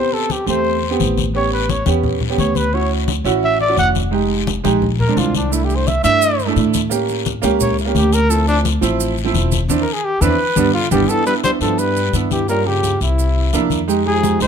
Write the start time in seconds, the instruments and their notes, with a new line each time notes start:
Already playing: grand piano B3 C4 G4, trumpet C5
0.13 trumpet A4, high conga
0.30 trumpet G4, high conga, short guiro
0.46 upright bass E2, grand piano A3 C4 G4, trumpet C5, high conga, short guiro
0.65 high conga, long guiro
0.83 high conga
0.90 grand piano B3 C4 G4
1.00 upright bass A1, high conga, short guiro
1.17 high conga, short guiro
1.34 grand piano B3 C#4 G4, trumpet C#5, high conga, long guiro
1.52 trumpet B4, high conga
1.69 trumpet C#5, high conga, short guiro
1.86 upright bass E2, grand piano B3 C#4 G4, high conga, short guiro
2.03 high conga, low conga, long guiro
2.21 high conga, low conga
2.29 grand piano B3 C#4 G4
2.38 upright bass D2, trumpet C#5, high conga, short guiro
2.55 trumpet B4, high conga, short guiro
2.73 grand piano C#4 E4 F#4, trumpet C#5, high conga, long guiro
2.91 high conga
3.08 high conga, short guiro
3.24 upright bass A1, grand piano C#4 E4 F#4, high conga, short guiro
3.43 trumpet E5, high conga, long guiro
3.60 trumpet D5, high conga
3.68 grand piano C#4 E4 F#4
3.77 upright bass F1, trumpet F#5, high conga, short guiro
3.95 high conga, short guiro
4.11 grand piano G#3 D#4 G4, high conga, long guiro
4.30 high conga
4.47 high conga, short guiro
4.64 upright bass A#1, grand piano G#3 D#4 G4, high conga, short guiro
4.82 high conga, low conga, long guiro
5.00 trumpet A#4, high conga, low conga
5.07 grand piano G#3 C4 D4
5.17 upright bass C2, trumpet F4, high conga, short guiro
5.34 trumpet D4, high conga, short guiro
5.50 grand piano A3 D4 E4, trumpet E4, long guiro, maracas
5.65 trumpet G4
5.70 high conga, maracas
5.76 trumpet C5
5.87 trumpet E5, high conga, short guiro, maracas
6.03 upright bass G2, grand piano A3 D4 E4, trumpet E5, high conga, short guiro, maracas
6.22 high conga, long guiro, maracas
6.39 high conga, maracas
6.46 grand piano A3 D4 E4
6.56 upright bass A2, high conga, short guiro, maracas
6.74 high conga, short guiro, maracas
6.90 grand piano A#3 C#4 G4, high conga, long guiro, maracas
7.09 high conga, maracas
7.25 high conga, short guiro, maracas
7.42 upright bass C#2, grand piano A#3 C#4 G4, high conga, short guiro, maracas
7.60 trumpet C#5, high conga, low conga, long guiro, maracas
7.78 trumpet E4, high conga, maracas
7.85 grand piano A#3 C#4 G4
7.95 upright bass D2, trumpet G4, high conga, short guiro, maracas
8.13 trumpet A#4, short guiro, maracas
8.29 grand piano F3 C4 E4, trumpet A4, high conga, long guiro, maracas
8.48 trumpet D4, high conga, maracas
8.65 high conga, short guiro, maracas
8.81 upright bass A1, grand piano F3 C4 E4, high conga, short guiro, maracas
9.00 high conga, long guiro, maracas
9.17 high conga, maracas
9.24 grand piano F3 C4 E4
9.34 upright bass E1, high conga, short guiro, maracas
9.52 high conga, short guiro, maracas
9.68 upright bass E2, grand piano C4 D4 E4, high conga, long guiro, maracas
9.82 trumpet A#4
9.93 trumpet G#4
10.05 trumpet G4
10.21 upright bass E2, grand piano C4 D4 E4, trumpet B4, high conga, long guiro, maracas
10.56 upright bass G1, grand piano G3 B3 D4, high conga, long guiro, maracas
10.74 trombone D3, trumpet F4
10.91 upright bass G1, trombone E3, grand piano G3 B3 D4, trumpet G4, high conga, long guiro, maracas
11.08 trombone E3, grand piano B3 D4 E4, trumpet A4, long guiro, maracas
11.25 trombone G3, grand piano B3 D4 E4, trumpet B4, high conga, maracas
11.43 trombone G3, grand piano B3 D4 E4, trumpet C5, high conga, short guiro, maracas
11.61 upright bass G2, trombone F3, grand piano B3 D4 E4, trumpet A4, high conga, short guiro, maracas
11.78 trombone G3, trumpet B4, high conga, long guiro, maracas
11.96 high conga, maracas
12.13 upright bass G2, grand piano B3 D4 E4, high conga, short guiro, maracas
12.31 trombone E3, trumpet G4, high conga, short guiro, maracas
12.48 trombone G3, grand piano A#3 C#4 F4, trumpet A#4, high conga, long guiro, maracas
12.66 trombone C#3, trumpet G4, high conga
12.83 high conga, short guiro, maracas
13.01 upright bass C2, trombone C3, trumpet E4, high conga, short guiro, maracas
13.18 high conga, long guiro, maracas
13.36 high conga
13.53 upright bass F2, grand piano A#3 D4 E4, high conga, short guiro, maracas
13.70 high conga, short guiro, maracas
13.88 grand piano G#3 D#4 G4, high conga, long guiro, maracas
14.05 trombone F3, grand piano G#3 D#4 G4, trumpet G#4, high conga
14.22 grand piano G#3 D#4 G4, high conga, short guiro, maracas
14.40 upright bass C2, grand piano G#3 D#4 G4, trombone G#3, trumpet C5, high conga, short guiro, maracas